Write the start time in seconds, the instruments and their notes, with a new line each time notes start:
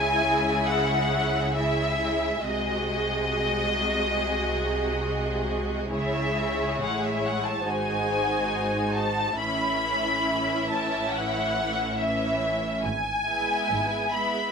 Already playing: double bass section C#2, cello section C#3, viola section G#3 E4, violin section G#4 E5 G#5
0.65 violin section F#5
1.55 viola section G#3 E4, violin section G#4 E5
2.44 double bass section C2, cello section C3, viola section G#3 F#4, violin section G#4 D#5
5.93 double bass section C#2, cello section C#3, viola section G#3 E4, violin section G#4 C#5 E5
6.80 double bass section A1, cello section A2, violin section F#5
7.04 violin section E5
7.26 violin section F#5
7.45 violin section A5
7.64 double bass section G#1, cello section G#2, viola section G#3 D#4, violin section F#4 C5 G#5
8.95 violin section A5
9.38 double bass section A1, cello section A2, viola section E3 C#4, violin section E4 E5 B5
10.70 violin section A5
11.12 violin section F#5
11.98 viola section E3 C#4, violin section E4 E5
12.83 double bass section G#1, cello section G#2, violin section G#5
13.27 viola section G#3 B3, violin section E4 E5
13.70 double bass section G#1, cello section G#2
14.13 viola section G#3 B3, violin section E4 E5 B5